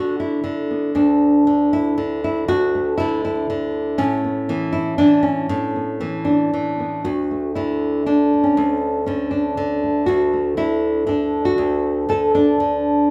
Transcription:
0.00 0.42 D3 medium
0.00 0.69 B3 soft
0.00 0.19 F#4 loud
0.20 0.95 E4 medium
0.44 1.47 D3 medium
0.70 0.93 B3 soft
0.95 2.47 D2 medium
0.95 1.72 D4 medium
1.47 1.96 D3 medium
1.73 2.23 E4 loud
1.98 2.98 D3 medium
2.24 2.48 E4 loud
2.48 3.98 D2 medium
2.48 2.97 F#4 loud
2.75 4.24 A3 medium
2.98 3.49 D3 medium
2.98 3.23 E4 loud
3.25 3.99 E4 medium
3.50 3.99 D3 medium
3.98 5.48 A2 medium
3.98 5.21 C#4 loud
4.24 4.49 B3 soft
4.49 4.97 E3 medium
4.49 5.47 B3 medium
4.73 4.98 E4 loud
4.98 5.46 E3 medium
4.98 5.24 D4 loud
5.23 7.04 C#4 medium
5.49 7.05 A2 medium
5.49 5.75 B3 medium
5.76 6.00 B3 soft
6.01 6.52 E3 medium
6.01 6.26 B3 medium
6.25 6.78 B3 soft
6.25 7.04 D4 medium
6.54 7.02 E3 medium
6.80 7.02 B3 soft
7.04 8.57 D2 medium
7.04 7.55 F#4 loud
7.31 8.33 A3 soft
7.55 8.06 D3 medium
7.55 8.06 E4 medium
8.06 9.07 D3 medium
8.06 8.95 D4 medium
8.33 8.57 A3 soft
8.44 9.05 C#4 medium
8.57 10.08 D2 medium
8.57 9.83 A3 medium
9.06 9.57 D3 medium
9.06 9.82 C#4 medium
9.31 10.06 D4 medium
9.57 10.57 D3 medium
9.84 10.33 A3 soft
10.06 11.57 D2 medium
10.06 10.57 F#4 loud
10.33 11.56 A3 soft
10.57 11.05 D3 medium
10.57 11.08 E4 loud
11.07 12.08 D3 medium
11.07 11.45 D4 medium
11.45 12.09 F#4 loud
11.58 13.11 D2 medium
11.58 13.11 A3 medium
12.09 12.59 D3 medium
12.09 12.34 A4 loud
12.35 13.11 D4 loud
12.60 13.11 D3 medium

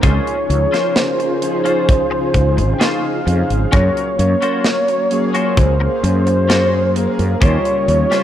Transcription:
0.03 0.18 C#2 loud
0.03 3.69 C#3 medium
0.03 0.67 F3 medium
0.03 0.38 C#4 loud
0.03 0.67 C#4 medium
0.03 0.68 D#4 medium
0.03 0.38 F4 medium
0.03 3.69 F4 medium
0.03 0.38 G#4 loud
0.03 3.69 G#4 medium
0.03 0.68 G#4 medium
0.03 0.38 C5 loud
0.03 0.98 C#5 loud
0.03 kick loud
0.03 closed hi-hat medium
0.27 closed hi-hat medium
0.50 0.65 C#2 loud
0.50 closed hi-hat medium
0.72 1.36 F3 medium
0.72 0.95 C#4 medium
0.72 1.37 C#4 medium
0.72 1.37 D#4 medium
0.72 0.96 F4 medium
0.72 0.96 G#4 medium
0.72 1.37 A#4 medium
0.72 1.36 C5 medium
0.72 0.96 C5 loud
0.72 snare soft
0.72 closed hi-hat medium
0.96 2.75 C5 loud
0.96 snare loud
0.96 closed hi-hat medium
1.19 muted clean electric guitar stroke soft
1.19 closed hi-hat soft
1.41 2.06 F3 loud
1.41 2.06 C#4 medium
1.41 2.06 D#4 medium
1.41 2.07 G#4 loud
1.41 2.06 C5 medium
1.41 closed hi-hat loud
1.65 1.88 C#4 medium
1.65 1.88 F4 medium
1.65 1.88 G#4 medium
1.65 1.88 C5 medium
1.65 closed hi-hat medium
1.89 kick loud
1.89 closed hi-hat medium
2.11 2.76 F3 medium
2.11 2.76 C#4 medium
2.11 2.76 D#4 medium
2.11 2.76 G#4 medium
2.11 2.76 C5 medium
2.11 muted clean electric guitar stroke loud
2.34 2.59 C#2 medium
2.34 muted clean electric guitar stroke soft
2.34 kick medium
2.34 closed hi-hat medium
2.57 2.72 G#1 medium
2.57 muted clean electric guitar stroke soft
2.57 closed hi-hat medium
2.74 2.82 G5 medium
2.80 3.21 F3 medium
2.80 3.04 C#4 medium
2.80 3.21 C#4 medium
2.80 3.22 D#4 medium
2.80 3.04 F4 medium
2.80 3.04 G#4 medium
2.80 3.22 G#4 medium
2.80 3.21 C5 medium
2.80 3.04 C5 medium
2.80 3.75 F5 loud
2.80 snare loud
2.80 closed hi-hat medium
3.26 3.42 F2 loud
3.26 3.67 F3 medium
3.26 3.67 C#4 medium
3.26 3.68 D#4 medium
3.26 3.68 G#4 medium
3.26 3.67 C5 medium
3.26 muted clean electric guitar stroke soft
3.26 closed hi-hat medium
3.50 3.65 G#1 medium
3.50 closed hi-hat medium
3.72 3.88 F#2 medium
3.72 4.36 F#3 medium
3.72 4.37 A#3 medium
3.72 7.38 A#3 medium
3.72 4.07 C#4 loud
3.72 4.37 C#4 medium
3.72 4.07 F4 loud
3.72 4.08 F#4 loud
3.72 4.37 G#4 medium
3.72 4.08 A#4 loud
3.72 4.19 C#5 loud
3.72 4.37 F5 medium
3.72 kick loud
3.72 closed hi-hat medium
3.97 closed hi-hat medium
4.19 4.34 F#2 loud
4.19 5.51 C#5 loud
4.19 closed hi-hat medium
4.42 5.06 F#3 medium
4.42 5.06 A#3 medium
4.42 4.65 C#4 medium
4.42 5.06 C#4 medium
4.42 4.65 F4 medium
4.42 4.65 F#4 medium
4.42 5.06 A#4 medium
4.42 4.65 C5 loud
4.42 5.06 F5 medium
4.42 closed hi-hat medium
4.64 snare loud
4.64 closed hi-hat medium
4.88 muted clean electric guitar stroke soft
4.88 closed hi-hat medium
5.11 5.75 F#3 loud
5.11 5.75 A#3 medium
5.11 5.75 C#4 medium
5.11 5.76 G#4 loud
5.11 5.76 F5 medium
5.11 closed hi-hat medium
5.34 5.57 C#4 medium
5.34 5.57 F4 medium
5.34 5.57 F#4 medium
5.34 5.58 C5 medium
5.34 closed hi-hat medium
5.51 5.60 C#5 medium
5.57 5.87 C#2 loud
5.57 6.98 C5 loud
5.57 kick loud
5.57 closed hi-hat medium
5.80 6.45 F#3 medium
5.80 6.45 A#3 medium
5.80 6.45 C#4 medium
5.80 6.46 G#4 medium
5.80 6.45 F5 medium
5.80 muted clean electric guitar stroke loud
6.03 7.06 F#2 loud
6.03 muted clean electric guitar stroke soft
6.03 closed hi-hat loud
6.27 muted clean electric guitar stroke soft
6.27 closed hi-hat medium
6.49 6.90 F#3 medium
6.49 6.90 A#3 medium
6.49 6.73 C#4 medium
6.49 6.91 C#4 medium
6.49 6.73 F4 medium
6.49 6.73 F#4 medium
6.49 6.91 G#4 loud
6.49 6.73 C5 medium
6.49 6.91 F5 medium
6.49 snare loud
6.49 closed hi-hat medium
6.95 7.36 F#3 medium
6.95 7.37 A#3 medium
6.95 7.37 C#4 medium
6.95 7.37 G#4 medium
6.95 7.45 A#4 medium
6.95 7.37 F5 medium
6.95 muted clean electric guitar stroke soft
6.95 closed hi-hat medium
7.19 7.34 F#2 medium
7.19 closed hi-hat medium
7.41 7.57 D#2 loud
7.41 8.23 C#3 medium
7.41 8.06 G3 medium
7.41 7.77 C#4 loud
7.41 8.06 C#4 medium
7.41 7.77 F4 medium
7.41 8.23 F4 medium
7.41 8.06 F4 medium
7.41 7.77 G4 loud
7.41 8.23 G4 medium
7.41 8.07 A#4 medium
7.41 7.77 C5 loud
7.41 8.23 C#5 loud
7.41 8.06 D#5 medium
7.41 kick loud
7.41 closed hi-hat medium
7.65 closed hi-hat soft
7.88 8.03 D#2 loud
7.88 closed hi-hat medium
8.11 8.23 G3 medium
8.11 8.23 C#4 medium
8.11 8.23 F4 medium
8.11 8.23 G4 medium
8.11 8.23 C5 medium
8.11 snare soft
8.11 closed hi-hat medium

